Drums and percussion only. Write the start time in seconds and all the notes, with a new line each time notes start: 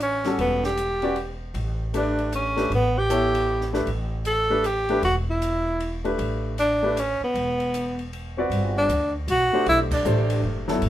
0.00 hi-hat pedal, ride
0.24 snare, ride
0.39 ride
0.64 snare
0.77 hi-hat pedal, ride
1.02 ride
1.16 ride
1.55 ride
1.94 hi-hat pedal, ride
2.19 ride
2.33 hi-hat pedal, ride
2.57 snare, ride
2.72 ride
3.10 hi-hat pedal, ride
3.35 ride
3.61 snare
3.74 snare
3.87 ride
4.25 hi-hat pedal, ride
4.64 hi-hat pedal, ride
4.89 ride
5.03 ride
5.42 hi-hat pedal, ride
5.80 ride
6.05 ride
6.19 ride
6.58 hi-hat pedal, ride
6.97 hi-hat pedal, ride
7.35 ride
7.60 ride
7.74 hi-hat pedal, ride
7.99 ride
8.13 ride
8.52 ride
8.90 hi-hat pedal, ride
9.28 hi-hat pedal, ride
9.66 ride
9.91 kick, crash
10.05 hi-hat pedal
10.30 ride
10.68 snare
10.82 ride